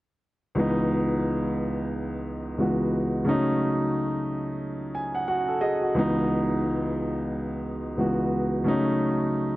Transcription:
0, 0, Header, 1, 2, 480
1, 0, Start_track
1, 0, Key_signature, 4, "minor"
1, 0, Tempo, 674157
1, 399, Time_signature, 4, 2, 24, 8
1, 6810, End_track
2, 0, Start_track
2, 0, Title_t, "Grand piano"
2, 0, Program_c, 0, 0
2, 391, Note_on_c, 0, 37, 79
2, 399, Note_on_c, 0, 52, 65
2, 406, Note_on_c, 0, 56, 66
2, 414, Note_on_c, 0, 59, 70
2, 422, Note_on_c, 0, 63, 83
2, 520, Control_c, 0, 64, 127
2, 1807, Note_off_c, 0, 37, 0
2, 1811, Note_off_c, 0, 52, 0
2, 1814, Note_off_c, 0, 56, 0
2, 1818, Note_off_c, 0, 59, 0
2, 1822, Note_off_c, 0, 63, 0
2, 1836, Note_on_c, 0, 37, 57
2, 1839, Note_on_c, 0, 52, 49
2, 1843, Note_on_c, 0, 56, 53
2, 1847, Note_on_c, 0, 59, 53
2, 1851, Note_on_c, 0, 66, 62
2, 2311, Note_on_c, 0, 49, 77
2, 2317, Note_off_c, 0, 37, 0
2, 2318, Note_on_c, 0, 54, 65
2, 2319, Note_off_c, 0, 52, 0
2, 2321, Note_off_c, 0, 56, 0
2, 2323, Note_off_c, 0, 59, 0
2, 2325, Note_off_c, 0, 66, 0
2, 2326, Note_on_c, 0, 57, 72
2, 2329, Control_c, 0, 64, 0
2, 2334, Note_on_c, 0, 61, 65
2, 2341, Note_on_c, 0, 63, 90
2, 2451, Control_c, 0, 64, 127
2, 3522, Note_on_c, 0, 80, 71
2, 3658, Note_off_c, 0, 80, 0
2, 3664, Note_on_c, 0, 78, 69
2, 3747, Note_off_c, 0, 78, 0
2, 3758, Note_on_c, 0, 66, 64
2, 3758, Note_on_c, 0, 78, 70
2, 3899, Note_off_c, 0, 66, 0
2, 3904, Note_on_c, 0, 69, 65
2, 3982, Note_off_c, 0, 78, 0
2, 3993, Note_off_c, 0, 69, 0
2, 3993, Note_on_c, 0, 68, 72
2, 3993, Note_on_c, 0, 75, 70
2, 4136, Note_off_c, 0, 68, 0
2, 4142, Note_on_c, 0, 66, 63
2, 4206, Note_off_c, 0, 49, 0
2, 4210, Note_off_c, 0, 54, 0
2, 4214, Note_off_c, 0, 57, 0
2, 4218, Note_off_c, 0, 61, 0
2, 4219, Note_off_c, 0, 75, 0
2, 4222, Note_off_c, 0, 63, 0
2, 4232, Note_on_c, 0, 37, 77
2, 4239, Note_on_c, 0, 52, 66
2, 4247, Control_c, 0, 64, 0
2, 4247, Note_on_c, 0, 56, 68
2, 4255, Note_on_c, 0, 59, 71
2, 4262, Note_on_c, 0, 63, 87
2, 4366, Control_c, 0, 64, 127
2, 4372, Note_off_c, 0, 66, 0
2, 5647, Note_off_c, 0, 37, 0
2, 5651, Note_off_c, 0, 52, 0
2, 5655, Note_off_c, 0, 56, 0
2, 5659, Note_off_c, 0, 59, 0
2, 5662, Note_off_c, 0, 63, 0
2, 5676, Note_on_c, 0, 37, 57
2, 5680, Note_on_c, 0, 52, 51
2, 5684, Note_on_c, 0, 56, 53
2, 5688, Note_on_c, 0, 59, 54
2, 5691, Note_on_c, 0, 66, 65
2, 6152, Note_on_c, 0, 49, 76
2, 6158, Note_off_c, 0, 37, 0
2, 6159, Note_on_c, 0, 54, 69
2, 6160, Note_off_c, 0, 52, 0
2, 6162, Note_off_c, 0, 56, 0
2, 6163, Note_off_c, 0, 59, 0
2, 6165, Note_off_c, 0, 66, 0
2, 6167, Note_on_c, 0, 57, 74
2, 6169, Control_c, 0, 64, 0
2, 6174, Note_on_c, 0, 61, 66
2, 6182, Note_on_c, 0, 63, 90
2, 6275, Control_c, 0, 64, 127
2, 6810, Note_off_c, 0, 49, 0
2, 6810, Note_off_c, 0, 54, 0
2, 6810, Note_off_c, 0, 57, 0
2, 6810, Note_off_c, 0, 61, 0
2, 6810, Note_off_c, 0, 63, 0
2, 6810, End_track
0, 0, End_of_file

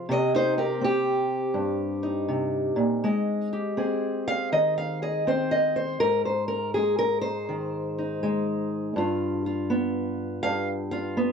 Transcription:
0, 0, Header, 1, 2, 480
1, 0, Start_track
1, 0, Tempo, 739827
1, 49, Time_signature, 4, 2, 24, 8
1, 7345, End_track
2, 0, Start_track
2, 0, Title_t, "Steel-string acoustic guitar"
2, 0, Program_c, 0, 25
2, 0, Note_on_c, 0, 72, 58
2, 57, Note_on_c, 0, 48, 75
2, 71, Note_off_c, 0, 72, 0
2, 73, Note_on_c, 0, 72, 96
2, 79, Note_off_c, 0, 72, 0
2, 79, Note_on_c, 0, 75, 110
2, 224, Note_off_c, 0, 75, 0
2, 224, Note_on_c, 0, 63, 84
2, 233, Note_on_c, 0, 72, 96
2, 373, Note_off_c, 0, 72, 0
2, 373, Note_on_c, 0, 60, 45
2, 376, Note_on_c, 0, 67, 71
2, 377, Note_off_c, 0, 63, 0
2, 382, Note_on_c, 0, 70, 77
2, 526, Note_off_c, 0, 60, 0
2, 528, Note_on_c, 0, 60, 67
2, 533, Note_off_c, 0, 67, 0
2, 536, Note_off_c, 0, 70, 0
2, 548, Note_on_c, 0, 67, 97
2, 999, Note_on_c, 0, 43, 60
2, 1015, Note_off_c, 0, 48, 0
2, 1317, Note_on_c, 0, 63, 46
2, 1483, Note_on_c, 0, 48, 59
2, 1788, Note_off_c, 0, 43, 0
2, 1791, Note_on_c, 0, 46, 63
2, 1797, Note_off_c, 0, 48, 0
2, 1967, Note_off_c, 0, 46, 0
2, 1971, Note_on_c, 0, 56, 73
2, 1973, Note_off_c, 0, 67, 0
2, 1976, Note_on_c, 0, 75, 49
2, 2286, Note_off_c, 0, 63, 0
2, 2289, Note_on_c, 0, 67, 46
2, 2444, Note_off_c, 0, 60, 0
2, 2447, Note_on_c, 0, 60, 64
2, 2452, Note_on_c, 0, 68, 47
2, 2772, Note_off_c, 0, 75, 0
2, 2774, Note_on_c, 0, 77, 108
2, 2933, Note_off_c, 0, 77, 0
2, 2934, Note_on_c, 0, 51, 64
2, 2936, Note_on_c, 0, 75, 89
2, 3094, Note_off_c, 0, 75, 0
2, 3099, Note_on_c, 0, 77, 91
2, 3241, Note_off_c, 0, 68, 0
2, 3256, Note_off_c, 0, 77, 0
2, 3257, Note_on_c, 0, 68, 50
2, 3260, Note_on_c, 0, 75, 85
2, 3410, Note_off_c, 0, 60, 0
2, 3416, Note_off_c, 0, 75, 0
2, 3419, Note_on_c, 0, 60, 71
2, 3420, Note_off_c, 0, 68, 0
2, 3425, Note_on_c, 0, 72, 81
2, 3576, Note_on_c, 0, 75, 89
2, 3579, Note_off_c, 0, 72, 0
2, 3734, Note_off_c, 0, 75, 0
2, 3737, Note_on_c, 0, 72, 83
2, 3871, Note_off_c, 0, 56, 0
2, 3872, Note_off_c, 0, 51, 0
2, 3875, Note_off_c, 0, 60, 0
2, 3893, Note_on_c, 0, 70, 107
2, 3894, Note_off_c, 0, 72, 0
2, 3902, Note_on_c, 0, 44, 67
2, 3921, Note_off_c, 0, 67, 0
2, 4052, Note_off_c, 0, 70, 0
2, 4057, Note_on_c, 0, 72, 79
2, 4200, Note_off_c, 0, 72, 0
2, 4203, Note_on_c, 0, 70, 85
2, 4367, Note_off_c, 0, 70, 0
2, 4373, Note_on_c, 0, 68, 92
2, 4385, Note_on_c, 0, 56, 66
2, 4530, Note_off_c, 0, 68, 0
2, 4532, Note_on_c, 0, 70, 109
2, 4678, Note_off_c, 0, 70, 0
2, 4681, Note_on_c, 0, 72, 100
2, 4858, Note_on_c, 0, 51, 58
2, 5180, Note_on_c, 0, 63, 46
2, 5331, Note_off_c, 0, 56, 0
2, 5339, Note_on_c, 0, 56, 69
2, 5793, Note_off_c, 0, 51, 0
2, 5794, Note_off_c, 0, 44, 0
2, 5794, Note_off_c, 0, 56, 0
2, 5799, Note_off_c, 0, 63, 0
2, 5805, Note_off_c, 0, 72, 0
2, 5813, Note_on_c, 0, 43, 77
2, 5825, Note_on_c, 0, 65, 55
2, 6127, Note_off_c, 0, 65, 0
2, 6139, Note_on_c, 0, 65, 48
2, 6293, Note_on_c, 0, 59, 72
2, 6766, Note_off_c, 0, 43, 0
2, 6766, Note_on_c, 0, 77, 109
2, 6773, Note_on_c, 0, 43, 68
2, 6927, Note_off_c, 0, 77, 0
2, 7081, Note_off_c, 0, 65, 0
2, 7081, Note_on_c, 0, 77, 89
2, 7088, Note_on_c, 0, 65, 51
2, 7239, Note_off_c, 0, 59, 0
2, 7244, Note_off_c, 0, 77, 0
2, 7247, Note_on_c, 0, 59, 71
2, 7345, Note_off_c, 0, 43, 0
2, 7345, Note_off_c, 0, 59, 0
2, 7345, Note_off_c, 0, 65, 0
2, 7345, End_track
0, 0, End_of_file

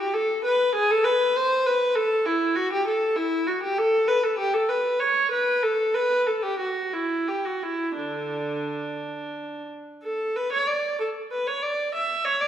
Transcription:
0, 0, Header, 1, 2, 480
1, 0, Start_track
1, 0, Key_signature, 2, "major"
1, 0, Tempo, 606061
1, 351, Time_signature, 6, 3, 24, 8
1, 3713, Tempo, 628272
1, 4673, Tempo, 665188
1, 5633, Tempo, 691244
1, 7553, Tempo, 631579
1, 9405, End_track
2, 0, Start_track
2, 0, Title_t, "Viola"
2, 0, Program_c, 0, 41
2, 2, Note_on_c, 0, 67, 70
2, 110, Note_on_c, 0, 69, 81
2, 115, Note_off_c, 0, 67, 0
2, 350, Note_off_c, 0, 69, 0
2, 353, Note_on_c, 0, 71, 73
2, 589, Note_off_c, 0, 71, 0
2, 596, Note_on_c, 0, 68, 81
2, 714, Note_off_c, 0, 68, 0
2, 719, Note_on_c, 0, 69, 87
2, 826, Note_on_c, 0, 71, 78
2, 838, Note_off_c, 0, 69, 0
2, 1071, Note_off_c, 0, 71, 0
2, 1078, Note_on_c, 0, 72, 80
2, 1315, Note_on_c, 0, 71, 76
2, 1316, Note_off_c, 0, 72, 0
2, 1549, Note_on_c, 0, 69, 85
2, 1555, Note_off_c, 0, 71, 0
2, 1791, Note_on_c, 0, 64, 75
2, 1793, Note_off_c, 0, 69, 0
2, 2027, Note_on_c, 0, 66, 81
2, 2035, Note_off_c, 0, 64, 0
2, 2152, Note_off_c, 0, 66, 0
2, 2160, Note_on_c, 0, 67, 79
2, 2275, Note_off_c, 0, 67, 0
2, 2276, Note_on_c, 0, 69, 72
2, 2503, Note_on_c, 0, 64, 76
2, 2509, Note_off_c, 0, 69, 0
2, 2748, Note_off_c, 0, 64, 0
2, 2748, Note_on_c, 0, 66, 66
2, 2871, Note_off_c, 0, 66, 0
2, 2877, Note_on_c, 0, 67, 72
2, 2993, Note_off_c, 0, 67, 0
2, 2995, Note_on_c, 0, 69, 80
2, 3233, Note_on_c, 0, 71, 76
2, 3235, Note_off_c, 0, 69, 0
2, 3354, Note_off_c, 0, 71, 0
2, 3354, Note_on_c, 0, 69, 69
2, 3473, Note_on_c, 0, 67, 80
2, 3474, Note_off_c, 0, 69, 0
2, 3591, Note_off_c, 0, 67, 0
2, 3595, Note_on_c, 0, 69, 80
2, 3714, Note_on_c, 0, 71, 69
2, 3715, Note_off_c, 0, 69, 0
2, 3949, Note_on_c, 0, 73, 74
2, 3951, Note_off_c, 0, 71, 0
2, 4190, Note_off_c, 0, 73, 0
2, 4190, Note_on_c, 0, 71, 72
2, 4426, Note_off_c, 0, 71, 0
2, 4431, Note_on_c, 0, 69, 71
2, 4674, Note_off_c, 0, 69, 0
2, 4676, Note_on_c, 0, 71, 80
2, 4907, Note_on_c, 0, 69, 63
2, 4908, Note_off_c, 0, 71, 0
2, 5023, Note_on_c, 0, 67, 67
2, 5025, Note_off_c, 0, 69, 0
2, 5140, Note_on_c, 0, 66, 60
2, 5143, Note_off_c, 0, 67, 0
2, 5379, Note_off_c, 0, 66, 0
2, 5388, Note_on_c, 0, 64, 60
2, 5633, Note_on_c, 0, 67, 59
2, 5636, Note_off_c, 0, 64, 0
2, 5755, Note_off_c, 0, 67, 0
2, 5757, Note_on_c, 0, 66, 55
2, 5877, Note_off_c, 0, 66, 0
2, 5879, Note_on_c, 0, 64, 64
2, 6120, Note_off_c, 0, 64, 0
2, 6123, Note_on_c, 0, 62, 48
2, 6124, Note_on_c, 0, 50, 47
2, 6811, Note_off_c, 0, 50, 0
2, 7298, Note_off_c, 0, 62, 0
2, 7548, Note_on_c, 0, 69, 59
2, 7778, Note_off_c, 0, 69, 0
2, 7796, Note_on_c, 0, 71, 67
2, 7919, Note_off_c, 0, 71, 0
2, 7922, Note_on_c, 0, 73, 64
2, 8034, Note_on_c, 0, 74, 61
2, 8040, Note_off_c, 0, 73, 0
2, 8280, Note_off_c, 0, 74, 0
2, 8281, Note_on_c, 0, 69, 57
2, 8342, Note_off_c, 0, 69, 0
2, 8521, Note_on_c, 0, 71, 58
2, 8640, Note_on_c, 0, 73, 64
2, 8643, Note_off_c, 0, 71, 0
2, 8760, Note_on_c, 0, 74, 70
2, 8765, Note_off_c, 0, 73, 0
2, 9002, Note_off_c, 0, 74, 0
2, 9004, Note_on_c, 0, 76, 66
2, 9234, Note_off_c, 0, 76, 0
2, 9234, Note_on_c, 0, 73, 74
2, 9354, Note_off_c, 0, 73, 0
2, 9354, Note_on_c, 0, 74, 75
2, 9405, Note_off_c, 0, 74, 0
2, 9405, End_track
0, 0, End_of_file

